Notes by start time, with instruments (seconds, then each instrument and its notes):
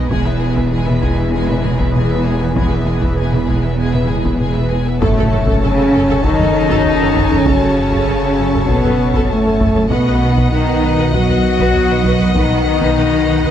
Already playing: sub bass B1, viola section B3, analog synth pad G#4, violin section B4 D#5
0.09 double bass section E1, sub bass E1, cello section E2, analog synth pad E3 B3 G#4 B4, french horn section G#3 E4, viola section G#3, violin section G#4 G#5, taiko
0.25 viola section B3, violin section B4 E5
0.41 viola section G#3, violin section G#4 G#5
0.56 viola section B3, violin section B4 E5, taiko
0.72 viola section G#3, violin section G#4 G#5
0.87 viola section B3, violin section B4 E5, taiko mid
1.03 viola section G#3, violin section G#4 G#5, taiko
1.17 viola section B3, violin section B4 E5
1.32 viola section G#3, violin section G#4 G#5
1.47 viola section B3, violin section B4 E5, taiko mid
1.63 viola section G#3, violin section G#4 G#5, taiko mid
1.79 viola section B3, violin section B4 E5, taiko
1.95 viola section G#3, violin section G#4 G#5, taiko mid
2.10 viola section B3, violin section B4 E5
2.25 viola section G#3, violin section G#4 G#5
2.41 viola section B3, violin section B4 E5
2.56 viola section G#3, violin section G#4 G#5, taiko
2.71 viola section B3, violin section B4 E5
2.87 viola section G#3, violin section G#4 G#5
3.02 viola section B3, violin section B4 E5, taiko
3.18 viola section G#3, violin section G#4 G#5
3.33 viola section B3, violin section B4 E5, taiko mid
3.48 viola section G#3, violin section G#4 G#5, taiko
3.63 viola section B3, violin section B4 E5
3.78 viola section G#3, violin section G#4 G#5
3.94 viola section B3, violin section B4 E5, taiko mid
4.09 viola section G#3, violin section G#4 G#5, taiko mid
4.24 viola section B3, violin section B4 E5, taiko
4.39 viola section G#3, violin section G#4 G#5, taiko mid
4.55 viola section B3, violin section B4 E5
4.70 viola section G#3, violin section G#4 G#5
4.86 viola section B3, violin section B4 E5
5.00 sub bass F#1, double bass section F#2, cello section A2, analog synth pad C#3 C#4 F#4 A4, french horn section A3, viola section A4, violin section C#5 A5, taiko, impact
5.17 double bass section F#2, viola section A4
5.32 double bass section F#2, viola section A4
5.47 double bass section F#2, viola section A4, taiko
5.61 double bass section F#2, cello section C#3, french horn section C#4, viola section A4
5.78 double bass section F#2, viola section A4, taiko rim
5.94 double bass section F#2, viola section A4
6.09 double bass section F#2, viola section A4, taiko low
6.23 double bass section F#2, cello section D#3, french horn section D#4, viola section A4, taiko
6.39 double bass section F#2, viola section A4, taiko low
6.70 double bass section F#2, viola section A4, taiko
6.85 taiko low
7.00 double bass section F#2, viola section A4
7.15 double bass section F#2, viola section A4, taiko
7.31 double bass section F#2, viola section A4, taiko low
7.46 double bass section F#2, cello section C#3, french horn section C#4, viola section A4, taiko
7.62 double bass section F#2, viola section A4
7.77 double bass section F#2, viola section A4
7.92 double bass section F#2, viola section A4, taiko
8.08 double bass section F#2, viola section A4
8.23 double bass section F#2, viola section A4
8.38 double bass section F#2, viola section A4
8.54 double bass section F#2, viola section A4, taiko low
8.67 double bass section F#2, cello section B2, french horn section B3, viola section A4, taiko
8.84 double bass section F#2, viola section A4, taiko low
9.14 double bass section F#2, viola section A4, taiko
9.30 cello section A2, french horn section A3, taiko low
9.46 double bass section F#2, viola section A4
9.60 double bass section F#2, viola section A4, taiko
9.76 double bass section F#2, viola section A4, taiko low
9.89 sub bass B1, double bass section B1, cello section B2, analog synth pad D#3 B3 F#4 B4, french horn section B3, viola section B4, violin section D#5 F#5, taiko
10.06 double bass section B1, viola section B4
10.22 double bass section B1, viola section B4
10.36 double bass section B1, viola section B4, taiko
10.50 double bass section B1, cello section D#3, french horn section D#4, viola section B4
10.67 double bass section B1, viola section B4
10.83 double bass section B1, viola section B4
10.98 double bass section B1, viola section B4, taiko low
11.13 double bass section B1, cello section F#3, french horn section F#4, viola section B4, taiko
11.28 double bass section B1, viola section B4, taiko low
11.59 double bass section B1, viola section B4, taiko
11.75 taiko low
11.90 double bass section B1, viola section B4
12.05 double bass section B1, viola section B4, taiko
12.20 double bass section B1, viola section B4, taiko low
12.35 double bass section B1, cello section D#3, french horn section D#4, viola section B4, taiko
12.51 double bass section B1, viola section B4
12.66 double bass section B1, viola section B4
12.81 double bass section B1, viola section B4, taiko
12.96 double bass section B1, viola section B4
13.12 double bass section B1, viola section B4
13.28 double bass section B1, viola section B4
13.43 double bass section B1, viola section B4, taiko low